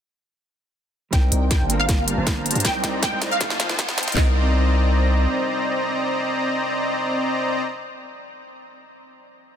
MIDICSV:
0, 0, Header, 1, 7, 480
1, 0, Start_track
1, 0, Tempo, 379747
1, 1428, Time_signature, 4, 2, 24, 8
1, 12089, End_track
2, 0, Start_track
2, 0, Title_t, "Synth pluck"
2, 0, Program_c, 0, 84
2, 1424, Note_on_c, 0, 79, 96
2, 1691, Note_off_c, 0, 79, 0
2, 1905, Note_on_c, 0, 79, 90
2, 2106, Note_off_c, 0, 79, 0
2, 2270, Note_on_c, 0, 77, 93
2, 3254, Note_off_c, 0, 77, 0
2, 3346, Note_on_c, 0, 79, 99
2, 3612, Note_off_c, 0, 79, 0
2, 3828, Note_on_c, 0, 79, 93
2, 4027, Note_off_c, 0, 79, 0
2, 4189, Note_on_c, 0, 77, 95
2, 5174, Note_off_c, 0, 77, 0
2, 5270, Note_on_c, 0, 75, 93
2, 9628, Note_off_c, 0, 75, 0
2, 12089, End_track
3, 0, Start_track
3, 0, Title_t, "Supersaw synth"
3, 0, Program_c, 1, 81
3, 1428, Note_on_c, 1, 60, 81
3, 1428, Note_on_c, 1, 72, 73
3, 1428, Note_on_c, 1, 74, 72
3, 1428, Note_on_c, 1, 75, 73
3, 1428, Note_on_c, 1, 82, 88
3, 1640, Note_off_c, 1, 72, 0
3, 1640, Note_off_c, 1, 74, 0
3, 1640, Note_off_c, 1, 75, 0
3, 1641, Note_off_c, 1, 60, 0
3, 1641, Note_off_c, 1, 82, 0
3, 1669, Note_on_c, 1, 75, 68
3, 1669, Note_on_c, 1, 82, 84
3, 1670, Note_on_c, 1, 60, 75
3, 1670, Note_on_c, 1, 72, 71
3, 1670, Note_on_c, 1, 74, 68
3, 2002, Note_off_c, 1, 75, 0
3, 2003, Note_off_c, 1, 60, 0
3, 2003, Note_off_c, 1, 72, 0
3, 2003, Note_off_c, 1, 74, 0
3, 2003, Note_off_c, 1, 82, 0
3, 2030, Note_on_c, 1, 62, 77
3, 2030, Note_on_c, 1, 77, 77
3, 2030, Note_on_c, 1, 81, 76
3, 2030, Note_on_c, 1, 82, 94
3, 2031, Note_on_c, 1, 55, 83
3, 2031, Note_on_c, 1, 72, 77
3, 2360, Note_off_c, 1, 62, 0
3, 2360, Note_off_c, 1, 72, 0
3, 2360, Note_off_c, 1, 77, 0
3, 2360, Note_off_c, 1, 81, 0
3, 2360, Note_off_c, 1, 82, 0
3, 2361, Note_off_c, 1, 55, 0
3, 2389, Note_on_c, 1, 55, 79
3, 2389, Note_on_c, 1, 72, 70
3, 2389, Note_on_c, 1, 82, 84
3, 2390, Note_on_c, 1, 62, 71
3, 2390, Note_on_c, 1, 77, 71
3, 2390, Note_on_c, 1, 81, 70
3, 2722, Note_off_c, 1, 72, 0
3, 2723, Note_off_c, 1, 55, 0
3, 2723, Note_off_c, 1, 62, 0
3, 2723, Note_off_c, 1, 77, 0
3, 2723, Note_off_c, 1, 81, 0
3, 2723, Note_off_c, 1, 82, 0
3, 2749, Note_on_c, 1, 72, 87
3, 2750, Note_on_c, 1, 55, 96
3, 2750, Note_on_c, 1, 62, 89
3, 2750, Note_on_c, 1, 77, 90
3, 2750, Note_on_c, 1, 81, 86
3, 2750, Note_on_c, 1, 82, 106
3, 3201, Note_off_c, 1, 62, 0
3, 3201, Note_off_c, 1, 72, 0
3, 3201, Note_off_c, 1, 77, 0
3, 3201, Note_off_c, 1, 81, 0
3, 3201, Note_off_c, 1, 82, 0
3, 3202, Note_off_c, 1, 55, 0
3, 3231, Note_on_c, 1, 55, 81
3, 3231, Note_on_c, 1, 62, 76
3, 3231, Note_on_c, 1, 72, 75
3, 3231, Note_on_c, 1, 77, 75
3, 3231, Note_on_c, 1, 81, 76
3, 3231, Note_on_c, 1, 82, 89
3, 3320, Note_off_c, 1, 77, 0
3, 3320, Note_off_c, 1, 81, 0
3, 3321, Note_off_c, 1, 55, 0
3, 3321, Note_off_c, 1, 62, 0
3, 3321, Note_off_c, 1, 72, 0
3, 3321, Note_off_c, 1, 82, 0
3, 3347, Note_on_c, 1, 75, 74
3, 3347, Note_on_c, 1, 82, 88
3, 3348, Note_on_c, 1, 60, 82
3, 3348, Note_on_c, 1, 72, 74
3, 3348, Note_on_c, 1, 74, 75
3, 3560, Note_off_c, 1, 60, 0
3, 3560, Note_off_c, 1, 72, 0
3, 3560, Note_off_c, 1, 74, 0
3, 3560, Note_off_c, 1, 75, 0
3, 3560, Note_off_c, 1, 82, 0
3, 3585, Note_on_c, 1, 60, 78
3, 3585, Note_on_c, 1, 72, 74
3, 3585, Note_on_c, 1, 74, 72
3, 3586, Note_on_c, 1, 75, 72
3, 3586, Note_on_c, 1, 82, 85
3, 3920, Note_off_c, 1, 72, 0
3, 3921, Note_off_c, 1, 60, 0
3, 3921, Note_off_c, 1, 74, 0
3, 3921, Note_off_c, 1, 75, 0
3, 3921, Note_off_c, 1, 82, 0
3, 3949, Note_on_c, 1, 60, 86
3, 3950, Note_on_c, 1, 74, 76
3, 3950, Note_on_c, 1, 75, 80
3, 3951, Note_on_c, 1, 72, 81
3, 3951, Note_on_c, 1, 82, 95
3, 4280, Note_off_c, 1, 60, 0
3, 4280, Note_off_c, 1, 72, 0
3, 4280, Note_off_c, 1, 74, 0
3, 4280, Note_off_c, 1, 75, 0
3, 4281, Note_off_c, 1, 82, 0
3, 4307, Note_on_c, 1, 65, 76
3, 4307, Note_on_c, 1, 75, 72
3, 4307, Note_on_c, 1, 81, 89
3, 4308, Note_on_c, 1, 72, 74
3, 4308, Note_on_c, 1, 79, 71
3, 4641, Note_off_c, 1, 81, 0
3, 4642, Note_off_c, 1, 65, 0
3, 4642, Note_off_c, 1, 72, 0
3, 4642, Note_off_c, 1, 75, 0
3, 4642, Note_off_c, 1, 79, 0
3, 4668, Note_on_c, 1, 75, 90
3, 4668, Note_on_c, 1, 79, 89
3, 4668, Note_on_c, 1, 81, 109
3, 4669, Note_on_c, 1, 65, 98
3, 4669, Note_on_c, 1, 72, 89
3, 5120, Note_off_c, 1, 75, 0
3, 5120, Note_off_c, 1, 79, 0
3, 5121, Note_off_c, 1, 65, 0
3, 5121, Note_off_c, 1, 72, 0
3, 5121, Note_off_c, 1, 81, 0
3, 5149, Note_on_c, 1, 72, 77
3, 5149, Note_on_c, 1, 75, 75
3, 5150, Note_on_c, 1, 65, 80
3, 5150, Note_on_c, 1, 84, 92
3, 5151, Note_on_c, 1, 79, 78
3, 5240, Note_off_c, 1, 65, 0
3, 5240, Note_off_c, 1, 72, 0
3, 5240, Note_off_c, 1, 75, 0
3, 5240, Note_off_c, 1, 79, 0
3, 5240, Note_off_c, 1, 84, 0
3, 5265, Note_on_c, 1, 72, 79
3, 5265, Note_on_c, 1, 74, 80
3, 5266, Note_on_c, 1, 60, 83
3, 5266, Note_on_c, 1, 75, 77
3, 5266, Note_on_c, 1, 82, 91
3, 9624, Note_off_c, 1, 60, 0
3, 9624, Note_off_c, 1, 72, 0
3, 9624, Note_off_c, 1, 74, 0
3, 9624, Note_off_c, 1, 75, 0
3, 9624, Note_off_c, 1, 82, 0
3, 12089, End_track
4, 0, Start_track
4, 0, Title_t, "Clean electric guitar"
4, 0, Program_c, 2, 27
4, 1399, Note_on_c, 2, 55, 76
4, 1416, Note_on_c, 2, 60, 70
4, 1432, Note_on_c, 2, 63, 69
4, 1450, Note_on_c, 2, 70, 84
4, 2087, Note_off_c, 2, 55, 0
4, 2096, Note_off_c, 2, 60, 0
4, 2104, Note_off_c, 2, 63, 0
4, 2113, Note_off_c, 2, 70, 0
4, 2121, Note_on_c, 2, 58, 89
4, 2140, Note_on_c, 2, 60, 81
4, 2156, Note_on_c, 2, 65, 83
4, 2173, Note_on_c, 2, 70, 101
4, 3288, Note_off_c, 2, 58, 0
4, 3298, Note_off_c, 2, 60, 0
4, 3306, Note_off_c, 2, 65, 0
4, 3314, Note_off_c, 2, 70, 0
4, 3320, Note_on_c, 2, 55, 78
4, 3336, Note_on_c, 2, 60, 71
4, 3354, Note_on_c, 2, 63, 73
4, 3370, Note_on_c, 2, 70, 88
4, 4248, Note_off_c, 2, 55, 0
4, 4256, Note_off_c, 2, 60, 0
4, 4265, Note_off_c, 2, 63, 0
4, 4273, Note_off_c, 2, 70, 0
4, 4280, Note_on_c, 2, 53, 81
4, 4297, Note_on_c, 2, 60, 74
4, 4314, Note_on_c, 2, 63, 76
4, 4331, Note_on_c, 2, 69, 90
4, 5208, Note_off_c, 2, 53, 0
4, 5216, Note_off_c, 2, 60, 0
4, 5224, Note_off_c, 2, 63, 0
4, 5231, Note_on_c, 2, 55, 85
4, 5233, Note_off_c, 2, 69, 0
4, 5256, Note_on_c, 2, 60, 79
4, 5283, Note_on_c, 2, 63, 77
4, 5308, Note_on_c, 2, 70, 95
4, 9589, Note_off_c, 2, 55, 0
4, 9614, Note_off_c, 2, 60, 0
4, 9641, Note_off_c, 2, 63, 0
4, 9666, Note_off_c, 2, 70, 0
4, 12089, End_track
5, 0, Start_track
5, 0, Title_t, "808-style bass"
5, 0, Program_c, 3, 38
5, 1426, Note_on_c, 3, 36, 97
5, 1644, Note_off_c, 3, 36, 0
5, 1667, Note_on_c, 3, 36, 92
5, 2006, Note_off_c, 3, 36, 0
5, 2029, Note_on_c, 3, 31, 93
5, 2364, Note_off_c, 3, 31, 0
5, 2385, Note_on_c, 3, 31, 94
5, 2725, Note_off_c, 3, 31, 0
5, 2749, Note_on_c, 3, 31, 100
5, 3206, Note_off_c, 3, 31, 0
5, 3229, Note_on_c, 3, 43, 95
5, 3324, Note_off_c, 3, 43, 0
5, 3344, Note_on_c, 3, 36, 98
5, 3563, Note_off_c, 3, 36, 0
5, 3588, Note_on_c, 3, 36, 96
5, 3927, Note_off_c, 3, 36, 0
5, 3950, Note_on_c, 3, 36, 97
5, 4285, Note_off_c, 3, 36, 0
5, 4304, Note_on_c, 3, 29, 95
5, 4645, Note_off_c, 3, 29, 0
5, 4671, Note_on_c, 3, 29, 97
5, 5127, Note_off_c, 3, 29, 0
5, 5153, Note_on_c, 3, 29, 96
5, 5246, Note_off_c, 3, 29, 0
5, 5267, Note_on_c, 3, 36, 98
5, 6657, Note_off_c, 3, 36, 0
5, 12089, End_track
6, 0, Start_track
6, 0, Title_t, "Riser"
6, 0, Program_c, 4, 103
6, 1427, Note_on_c, 4, 60, 78
6, 5268, Note_off_c, 4, 60, 0
6, 12089, End_track
7, 0, Start_track
7, 0, Title_t, "Drums"
7, 1426, Note_on_c, 9, 36, 93
7, 1427, Note_on_c, 9, 38, 47
7, 1427, Note_on_c, 9, 42, 81
7, 1552, Note_off_c, 9, 36, 0
7, 1553, Note_off_c, 9, 38, 0
7, 1553, Note_off_c, 9, 42, 0
7, 1666, Note_on_c, 9, 42, 65
7, 1793, Note_off_c, 9, 42, 0
7, 1905, Note_on_c, 9, 36, 90
7, 1905, Note_on_c, 9, 38, 52
7, 1905, Note_on_c, 9, 42, 79
7, 2032, Note_off_c, 9, 36, 0
7, 2032, Note_off_c, 9, 38, 0
7, 2032, Note_off_c, 9, 42, 0
7, 2145, Note_on_c, 9, 42, 66
7, 2272, Note_off_c, 9, 42, 0
7, 2385, Note_on_c, 9, 36, 92
7, 2385, Note_on_c, 9, 38, 58
7, 2385, Note_on_c, 9, 42, 81
7, 2511, Note_off_c, 9, 36, 0
7, 2511, Note_off_c, 9, 38, 0
7, 2511, Note_off_c, 9, 42, 0
7, 2625, Note_on_c, 9, 42, 67
7, 2751, Note_off_c, 9, 42, 0
7, 2865, Note_on_c, 9, 36, 97
7, 2865, Note_on_c, 9, 38, 64
7, 2865, Note_on_c, 9, 42, 79
7, 2991, Note_off_c, 9, 36, 0
7, 2992, Note_off_c, 9, 38, 0
7, 2992, Note_off_c, 9, 42, 0
7, 3106, Note_on_c, 9, 42, 50
7, 3169, Note_off_c, 9, 42, 0
7, 3169, Note_on_c, 9, 42, 66
7, 3229, Note_off_c, 9, 42, 0
7, 3229, Note_on_c, 9, 42, 50
7, 3288, Note_off_c, 9, 42, 0
7, 3288, Note_on_c, 9, 42, 66
7, 3345, Note_on_c, 9, 36, 98
7, 3347, Note_off_c, 9, 42, 0
7, 3347, Note_on_c, 9, 38, 75
7, 3347, Note_on_c, 9, 42, 82
7, 3471, Note_off_c, 9, 36, 0
7, 3473, Note_off_c, 9, 38, 0
7, 3473, Note_off_c, 9, 42, 0
7, 3585, Note_on_c, 9, 38, 76
7, 3585, Note_on_c, 9, 42, 65
7, 3712, Note_off_c, 9, 38, 0
7, 3712, Note_off_c, 9, 42, 0
7, 3825, Note_on_c, 9, 36, 94
7, 3825, Note_on_c, 9, 38, 83
7, 3825, Note_on_c, 9, 42, 77
7, 3951, Note_off_c, 9, 36, 0
7, 3952, Note_off_c, 9, 38, 0
7, 3952, Note_off_c, 9, 42, 0
7, 4065, Note_on_c, 9, 38, 90
7, 4065, Note_on_c, 9, 42, 67
7, 4191, Note_off_c, 9, 38, 0
7, 4191, Note_off_c, 9, 42, 0
7, 4305, Note_on_c, 9, 36, 97
7, 4306, Note_on_c, 9, 38, 93
7, 4306, Note_on_c, 9, 42, 80
7, 4429, Note_off_c, 9, 38, 0
7, 4429, Note_on_c, 9, 38, 81
7, 4432, Note_off_c, 9, 36, 0
7, 4432, Note_off_c, 9, 42, 0
7, 4547, Note_off_c, 9, 38, 0
7, 4547, Note_on_c, 9, 38, 94
7, 4547, Note_on_c, 9, 42, 65
7, 4670, Note_off_c, 9, 38, 0
7, 4670, Note_on_c, 9, 38, 88
7, 4673, Note_off_c, 9, 42, 0
7, 4786, Note_on_c, 9, 36, 100
7, 4787, Note_off_c, 9, 38, 0
7, 4787, Note_on_c, 9, 38, 101
7, 4787, Note_on_c, 9, 42, 80
7, 4912, Note_off_c, 9, 38, 0
7, 4912, Note_on_c, 9, 38, 89
7, 4913, Note_off_c, 9, 36, 0
7, 4913, Note_off_c, 9, 42, 0
7, 5027, Note_off_c, 9, 38, 0
7, 5027, Note_on_c, 9, 38, 105
7, 5027, Note_on_c, 9, 42, 50
7, 5091, Note_off_c, 9, 42, 0
7, 5091, Note_on_c, 9, 42, 67
7, 5153, Note_off_c, 9, 38, 0
7, 5153, Note_off_c, 9, 42, 0
7, 5153, Note_on_c, 9, 38, 95
7, 5153, Note_on_c, 9, 42, 50
7, 5210, Note_off_c, 9, 42, 0
7, 5210, Note_on_c, 9, 42, 66
7, 5267, Note_off_c, 9, 38, 0
7, 5267, Note_on_c, 9, 36, 107
7, 5267, Note_on_c, 9, 38, 109
7, 5267, Note_on_c, 9, 39, 91
7, 5336, Note_off_c, 9, 42, 0
7, 5393, Note_off_c, 9, 36, 0
7, 5393, Note_off_c, 9, 38, 0
7, 5393, Note_off_c, 9, 39, 0
7, 12089, End_track
0, 0, End_of_file